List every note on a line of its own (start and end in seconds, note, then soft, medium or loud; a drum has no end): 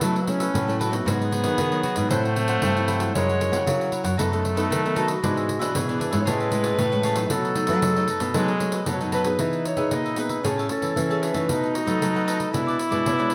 0.01 0.52 B2 medium
0.01 0.47 F#3 medium
0.01 0.18 A3 medium
0.01 0.30 A3 medium
0.01 0.18 C#4 medium
0.01 0.15 E4 medium
0.01 0.18 E4 medium
0.01 0.15 A4 medium
0.01 0.15 B4 medium
0.01 0.14 E5 medium
0.01 pandeiro medium
0.15 0.26 A4 soft
0.15 0.27 B4 soft
0.15 0.27 E5 medium
0.15 pandeiro soft
0.28 0.53 A3 medium
0.28 0.53 C#4 medium
0.28 0.81 C#4 loud
0.28 0.53 E4 medium
0.28 muted cavaquinho stroke soft
0.28 pandeiro medium
0.39 0.53 A4 medium
0.39 0.53 B4 medium
0.39 0.52 E5 medium
0.39 pandeiro medium
0.54 0.99 A2 medium
0.54 0.90 F#3 medium
0.54 0.78 E4 medium
0.54 0.79 A4 soft
0.54 0.79 B4 medium
0.54 0.80 E5 medium
0.54 pandeiro medium
0.68 0.90 A3 medium
0.68 0.90 C#4 medium
0.68 0.90 E4 medium
0.68 pandeiro soft
0.79 0.92 E4 medium
0.79 1.09 F#4 medium
0.79 0.92 A4 medium
0.79 0.91 B4 medium
0.79 0.90 E5 medium
0.79 pandeiro medium
0.91 1.30 F#3 medium
0.91 1.31 B3 medium
0.91 1.31 D#4 medium
0.91 1.05 A4 soft
0.91 1.05 B4 soft
0.91 1.04 E5 medium
0.91 pandeiro medium
1.05 1.46 G#2 loud
1.05 1.56 G#2 medium
1.05 2.07 B3 loud
1.05 1.18 F#4 medium
1.05 1.19 G#4 medium
1.05 2.11 G#4 loud
1.05 1.19 B4 medium
1.05 1.19 D#5 medium
1.05 pandeiro medium
1.20 1.31 G#4 soft
1.20 1.31 B4 soft
1.20 1.31 D#5 medium
1.20 pandeiro soft
1.31 1.56 F#3 medium
1.31 1.57 B3 medium
1.31 1.57 D#4 medium
1.31 muted cavaquinho stroke soft
1.31 pandeiro medium
1.44 1.56 D#3 medium
1.44 1.71 G#4 medium
1.44 1.71 B4 medium
1.44 1.70 D#5 medium
1.44 pandeiro medium
1.58 2.08 D#3 medium
1.58 1.81 D#3 loud
1.58 pandeiro medium
1.72 2.07 F#3 medium
1.72 2.07 B3 medium
1.72 2.07 D#4 medium
1.72 1.83 G#4 soft
1.72 1.83 B4 soft
1.72 1.84 D#5 soft
1.72 pandeiro soft
1.83 1.96 F#4 medium
1.83 1.96 G#4 medium
1.83 1.95 B4 medium
1.83 1.94 D#5 medium
1.83 pandeiro medium
1.95 2.08 G#2 medium
1.95 2.09 G#4 medium
1.95 2.09 B4 medium
1.95 2.08 D#5 medium
1.95 pandeiro medium
2.09 2.55 A2 medium
2.09 2.61 A2 medium
2.09 2.26 F#3 medium
2.09 3.17 A3 loud
2.09 2.27 C4 medium
2.09 2.22 E4 medium
2.09 2.27 E4 medium
2.09 2.22 A4 medium
2.09 3.14 C5 loud
2.09 2.23 C5 medium
2.09 2.22 F#5 medium
2.09 pandeiro medium
2.23 2.35 A4 soft
2.23 2.35 C5 soft
2.23 2.36 F#5 medium
2.23 pandeiro soft
2.36 2.71 F#3 medium
2.36 2.72 C4 medium
2.36 2.72 E4 medium
2.36 muted cavaquinho stroke soft
2.36 pandeiro medium
2.48 2.62 A4 medium
2.48 2.61 C5 medium
2.48 2.61 F#5 medium
2.48 pandeiro medium
2.62 3.07 G2 medium
2.62 3.13 E3 medium
2.62 2.87 E4 soft
2.62 2.87 A4 medium
2.62 2.87 C5 medium
2.62 2.88 F#5 medium
2.62 pandeiro medium
2.77 3.12 F#3 medium
2.77 3.12 C4 medium
2.77 3.12 E4 medium
2.77 pandeiro soft
2.88 3.00 E4 medium
2.88 3.00 A4 medium
2.88 3.00 C5 medium
2.88 3.00 F#5 medium
2.88 pandeiro medium
3.00 3.14 A4 soft
3.00 3.14 C5 soft
3.00 3.14 F#5 soft
3.00 pandeiro medium
3.14 3.54 F#2 loud
3.14 3.65 F#3 medium
3.14 3.65 G#3 loud
3.14 3.31 C#4 medium
3.14 3.27 E4 medium
3.14 3.31 E4 medium
3.14 3.27 A#4 medium
3.14 3.31 A#4 medium
3.14 3.89 C#5 loud
3.14 3.28 C#5 medium
3.14 3.27 F#5 medium
3.14 pandeiro medium
3.29 3.39 A#4 soft
3.29 3.40 C#5 soft
3.29 3.40 F#5 medium
3.29 pandeiro soft
3.40 3.63 C#4 medium
3.40 3.63 E4 medium
3.40 3.63 A#4 medium
3.40 muted cavaquinho stroke soft
3.40 pandeiro medium
3.51 3.64 C#3 medium
3.51 3.79 A#4 medium
3.51 3.78 C#5 medium
3.51 3.78 F#5 medium
3.51 pandeiro medium
3.66 3.89 C#3 loud
3.66 4.17 C#3 medium
3.66 4.15 F#3 loud
3.66 4.01 C#4 medium
3.66 4.01 E4 medium
3.66 4.02 A#4 medium
3.66 pandeiro medium
3.80 3.91 A#4 soft
3.80 3.92 C#5 soft
3.80 3.92 F#5 medium
3.80 pandeiro soft
3.91 4.04 E4 medium
3.91 4.04 A#4 medium
3.91 4.03 C#5 medium
3.91 4.02 F#5 medium
3.91 pandeiro medium
4.03 4.16 F#2 medium
4.03 4.17 A#4 medium
4.03 4.17 C#5 medium
4.03 4.17 F#5 medium
4.03 pandeiro medium
4.17 4.64 F#2 medium
4.17 4.69 F#3 medium
4.17 5.19 A3 loud
4.17 4.27 B3 medium
4.17 4.30 D#4 medium
4.17 4.27 D#4 medium
4.17 4.31 A4 medium
4.17 4.28 A4 medium
4.17 4.31 B4 medium
4.17 4.30 D#5 medium
4.17 pandeiro medium
4.31 4.54 B3 medium
4.31 4.55 D#4 medium
4.31 4.41 A4 soft
4.31 4.55 A4 medium
4.31 4.41 B4 soft
4.31 4.42 D#5 soft
4.31 pandeiro soft
4.42 muted cavaquinho stroke soft
4.42 pandeiro medium
4.55 4.79 B3 medium
4.55 4.79 D#4 medium
4.55 4.69 A4 medium
4.55 4.80 A4 medium
4.55 4.69 B4 medium
4.55 4.68 D#5 medium
4.55 pandeiro medium
4.70 5.15 D#3 medium
4.70 5.21 F#3 medium
4.70 4.94 D#4 medium
4.70 4.95 A4 medium
4.70 4.95 B4 medium
4.70 4.96 D#5 medium
4.70 pandeiro medium
4.85 4.94 B3 medium
4.85 4.94 D#4 medium
4.85 4.94 A4 medium
4.85 pandeiro soft
4.95 5.12 B3 medium
4.95 5.08 D#4 medium
4.95 5.12 D#4 medium
4.95 5.77 F#4 loud
4.95 5.08 A4 medium
4.95 5.13 A4 medium
4.95 5.07 B4 medium
4.95 5.06 D#5 medium
4.95 pandeiro medium
5.07 5.22 A4 soft
5.07 5.21 B4 soft
5.07 5.21 D#5 medium
5.07 pandeiro medium
5.22 5.73 G#2 medium
5.22 5.61 G#2 loud
5.22 5.48 E3 medium
5.22 5.71 G#3 medium
5.22 5.48 B3 medium
5.22 5.35 D4 medium
5.22 5.48 D4 medium
5.22 5.35 G#4 medium
5.22 5.35 B4 medium
5.22 5.35 E5 medium
5.22 pandeiro medium
5.36 5.46 G#4 soft
5.36 5.47 B4 soft
5.36 5.47 E5 soft
5.36 pandeiro soft
5.48 muted cavaquinho stroke soft
5.48 pandeiro medium
5.59 5.73 B2 loud
5.59 5.83 E3 medium
5.59 5.84 B3 medium
5.59 5.84 D4 medium
5.59 5.87 G#4 medium
5.59 5.86 B4 medium
5.59 5.86 E5 medium
5.59 pandeiro medium
5.74 6.24 G#2 medium
5.74 5.98 B2 loud
5.74 6.27 E3 medium
5.74 6.22 G#4 loud
5.74 pandeiro medium
5.88 6.10 E3 medium
5.88 6.11 B3 medium
5.88 6.11 D4 medium
5.88 5.98 G#4 soft
5.88 5.99 B4 soft
5.88 5.99 E5 medium
5.88 pandeiro soft
5.98 6.12 D4 medium
5.98 6.11 G#4 medium
5.98 6.10 B4 medium
5.98 6.09 E5 medium
5.98 pandeiro medium
6.10 6.25 G#2 medium
6.10 6.49 G#3 medium
6.10 6.48 C#4 medium
6.10 6.49 E4 medium
6.10 6.24 G#4 medium
6.10 6.25 B4 medium
6.10 6.24 E5 medium
6.10 pandeiro medium
6.20 6.29 C#5 medium
6.25 6.77 A2 medium
6.25 6.72 A2 loud
6.25 6.81 G#3 loud
6.25 6.38 G#4 medium
6.25 7.32 B4 loud
6.25 6.39 C#5 medium
6.25 6.39 E5 medium
6.25 6.38 A5 medium
6.25 pandeiro medium
6.40 6.50 C#5 soft
6.40 6.50 E5 soft
6.40 6.50 A5 medium
6.40 pandeiro soft
6.50 6.77 G#3 medium
6.50 6.77 C#4 medium
6.50 6.77 E4 medium
6.50 muted cavaquinho stroke soft
6.50 pandeiro medium
6.63 6.78 C#5 medium
6.63 6.78 E5 medium
6.63 6.77 A5 medium
6.63 pandeiro medium
6.77 7.24 A2 medium
6.77 7.28 E3 medium
6.77 7.33 A3 medium
6.77 7.03 G#4 medium
6.77 7.03 C#5 medium
6.77 7.04 E5 medium
6.77 7.04 A5 medium
6.77 pandeiro medium
6.92 7.14 G#3 medium
6.92 7.14 C#4 medium
6.92 7.15 E4 medium
6.92 pandeiro soft
7.03 7.17 G#4 medium
7.03 7.17 C#5 medium
7.03 7.16 E5 medium
7.03 7.15 A5 medium
7.03 pandeiro medium
7.16 7.54 F#3 medium
7.16 7.55 A3 medium
7.16 7.54 D#4 medium
7.16 7.30 C#5 soft
7.16 7.30 E5 soft
7.16 7.30 A5 soft
7.16 pandeiro medium
7.30 7.81 B2 medium
7.30 7.70 B2 loud
7.30 7.84 F#3 medium
7.30 7.43 D#4 medium
7.30 7.43 A4 medium
7.30 8.88 A4 loud
7.30 7.44 B4 medium
7.30 7.42 D#5 medium
7.30 pandeiro medium
7.43 7.55 A4 soft
7.43 7.55 B4 soft
7.43 7.55 D#5 medium
7.43 pandeiro soft
7.55 7.92 F#3 medium
7.55 7.92 A3 medium
7.55 7.92 D#4 medium
7.55 muted cavaquinho stroke soft
7.55 pandeiro medium
7.67 7.81 F#3 loud
7.67 7.95 A4 medium
7.67 7.94 B4 medium
7.67 7.94 D#5 medium
7.67 pandeiro medium
7.82 8.33 F#2 medium
7.82 8.05 F#3 loud
7.82 8.09 G#3 medium
7.82 pandeiro medium
7.96 8.32 F#3 medium
7.96 8.32 A3 medium
7.96 8.32 D#4 medium
7.96 8.07 A4 soft
7.96 8.08 B4 medium
7.96 8.09 D#5 soft
7.96 pandeiro soft
8.08 8.21 D#4 medium
8.08 8.21 A4 medium
8.08 8.20 B4 medium
8.08 8.19 D#5 medium
8.08 pandeiro medium
8.20 8.33 B2 medium
8.20 8.35 A4 medium
8.20 8.34 B4 medium
8.20 8.34 D#5 medium
8.20 pandeiro medium
8.34 8.85 B2 medium
8.34 8.80 F#3 medium
8.34 8.51 F#3 medium
8.34 8.89 G#3 loud
8.34 8.51 A3 medium
8.34 8.48 D#4 medium
8.34 8.51 D#4 medium
8.34 8.48 A4 medium
8.34 8.48 B4 medium
8.34 8.47 D#5 medium
8.34 pandeiro medium
8.48 8.59 A4 soft
8.48 8.59 B4 soft
8.48 8.59 D#5 medium
8.48 pandeiro soft
8.60 8.96 F#3 medium
8.60 8.96 A3 medium
8.60 8.97 D#4 medium
8.60 muted cavaquinho stroke soft
8.60 pandeiro medium
8.72 8.86 A4 medium
8.72 8.86 B4 medium
8.72 8.86 D#5 medium
8.72 pandeiro medium
8.86 9.37 F#2 medium
8.86 9.32 B2 medium
8.86 9.39 F#3 medium
8.86 9.11 D#4 medium
8.86 9.11 A4 medium
8.86 9.12 B4 medium
8.86 9.01 C#5 medium
8.86 9.12 D#5 medium
8.86 pandeiro medium
9.01 9.23 F#3 medium
9.01 9.23 A3 medium
9.01 9.24 D#4 medium
9.01 pandeiro soft
9.12 9.25 D#4 medium
9.12 9.25 A4 medium
9.12 9.25 B4 medium
9.12 9.63 B4 loud
9.12 9.24 D#5 medium
9.12 pandeiro medium
9.24 9.61 B3 medium
9.24 9.61 D#4 medium
9.24 9.61 G#4 medium
9.24 9.39 A4 soft
9.24 9.39 B4 soft
9.24 9.38 D#5 medium
9.24 pandeiro medium
9.39 9.73 E3 medium
9.39 9.90 E3 medium
9.39 9.64 D#4 soft
9.39 10.46 D#4 medium
9.39 9.64 G#4 soft
9.39 9.65 B4 soft
9.39 9.64 E5 soft
9.39 pandeiro medium
9.53 pandeiro soft
9.65 9.95 C#5 loud
9.65 muted cavaquinho stroke soft
9.65 pandeiro medium
9.77 9.89 B2 medium
9.77 10.13 B3 medium
9.77 10.13 D#4 medium
9.77 10.14 G#4 medium
9.77 9.90 G#4 soft
9.77 9.91 B4 medium
9.77 9.90 E5 medium
9.77 pandeiro medium
9.91 10.36 A#2 medium
9.91 10.04 D#4 soft
9.91 10.04 G#4 soft
9.91 10.04 B4 medium
9.91 10.18 D#5 medium
9.91 10.03 E5 soft
9.91 pandeiro medium
10.05 10.16 G#4 medium
10.05 10.17 B4 medium
10.05 10.17 E5 medium
10.05 pandeiro soft
10.16 10.42 B3 medium
10.16 10.30 D#4 medium
10.16 10.42 D#4 medium
10.16 10.29 G#4 medium
10.16 10.42 G#4 medium
10.16 10.29 B4 medium
10.16 10.47 B4 medium
10.16 10.28 E5 medium
10.16 pandeiro medium
10.29 10.43 G#4 medium
10.29 10.43 B4 medium
10.29 10.43 E5 medium
10.29 pandeiro medium
10.43 10.67 A2 medium
10.43 10.94 A3 medium
10.43 10.66 C#4 medium
10.43 10.96 C#4 medium
10.43 10.66 E4 medium
10.43 10.57 G#4 soft
10.43 10.67 G#4 medium
10.43 10.71 G#4 medium
10.43 10.57 C#5 soft
10.43 10.57 E5 soft
10.43 10.57 A5 medium
10.43 pandeiro medium
10.58 10.68 C#5 soft
10.58 10.69 E5 medium
10.58 10.69 A5 medium
10.58 pandeiro soft
10.69 11.05 C#4 medium
10.69 11.05 E4 medium
10.69 11.23 A4 medium
10.69 muted cavaquinho stroke soft
10.69 pandeiro medium
10.82 10.94 E3 medium
10.82 11.09 C#5 medium
10.82 11.08 E5 medium
10.82 11.08 A5 medium
10.82 pandeiro soft
10.96 11.46 E3 medium
10.96 11.30 E3 medium
10.96 11.50 C#4 medium
10.96 pandeiro medium
11.10 11.32 C#4 medium
11.10 11.32 E4 medium
11.10 11.32 G#4 medium
11.10 11.21 C#5 medium
11.10 11.22 E5 medium
11.10 11.22 A5 medium
11.10 pandeiro soft
11.22 11.35 G#4 medium
11.22 11.76 B4 loud
11.22 11.34 C#5 medium
11.22 11.33 E5 medium
11.22 11.33 A5 medium
11.22 pandeiro medium
11.34 11.46 E3 medium
11.34 11.83 A3 medium
11.34 11.83 D#4 medium
11.34 11.83 F#4 medium
11.34 11.48 C#5 soft
11.34 11.48 E5 medium
11.34 11.47 A5 medium
11.34 pandeiro medium
11.48 11.98 B2 medium
11.48 11.83 B2 medium
11.48 11.72 D#4 soft
11.48 12.55 D#4 loud
11.48 11.73 A4 soft
11.48 11.73 B4 soft
11.48 11.73 D#5 soft
11.48 pandeiro medium
11.63 pandeiro soft
11.74 11.89 F#4 medium
11.74 muted cavaquinho stroke soft
11.74 pandeiro medium
11.85 11.99 F#3 medium
11.85 12.09 A3 medium
11.85 12.10 D#4 medium
11.85 12.10 F#4 medium
11.85 12.00 A4 medium
11.85 12.67 A4 medium
11.85 11.99 B4 medium
11.85 11.99 D#5 medium
11.85 pandeiro medium
12.00 12.51 F#3 medium
12.00 12.46 F#3 medium
12.00 12.13 D#4 medium
12.00 12.13 A4 soft
12.00 12.14 B4 medium
12.00 12.14 D#5 medium
12.00 pandeiro medium
12.15 12.50 A3 medium
12.15 12.50 D#4 medium
12.15 12.50 F#4 medium
12.15 12.26 A4 medium
12.15 12.26 B4 medium
12.15 12.26 D#5 medium
12.15 pandeiro soft
12.26 12.39 D#4 medium
12.26 12.39 A4 medium
12.26 12.38 B4 medium
12.26 12.37 D#5 medium
12.26 pandeiro medium
12.38 12.52 A4 medium
12.38 12.52 B4 medium
12.38 12.52 D#5 medium
12.38 pandeiro medium
12.53 13.03 B2 medium
12.53 12.76 B2 medium
12.53 12.78 G#3 medium
12.53 12.78 D4 medium
12.53 12.65 E4 soft
12.53 13.35 E4 loud
12.53 12.79 E4 medium
12.53 12.66 G#4 medium
12.53 12.66 B4 soft
12.53 12.65 D5 medium
12.53 pandeiro medium
12.66 12.77 G#4 medium
12.66 12.78 B4 medium
12.66 12.78 D5 medium
12.66 pandeiro soft
12.78 muted cavaquinho stroke soft
12.78 pandeiro medium
12.90 13.04 B2 medium
12.90 13.14 G#3 medium
12.90 13.14 D4 medium
12.90 13.14 E4 medium
12.90 13.17 G#4 medium
12.90 13.17 B4 medium
12.90 13.16 D5 medium
12.90 pandeiro soft
13.06 13.35 B2 medium
13.06 13.15 C#5 medium
13.06 pandeiro medium
13.13 13.22 B4 medium
13.17 13.35 G#3 medium
13.17 13.35 D4 medium
13.17 13.35 E4 medium
13.17 13.29 G#4 medium
13.17 13.30 B4 medium
13.17 13.32 C#5 medium
13.17 13.30 D5 medium
13.17 pandeiro soft
13.30 13.35 E4 medium
13.30 13.35 G#4 soft
13.30 13.35 B4 loud
13.30 13.35 B4 medium
13.30 pandeiro medium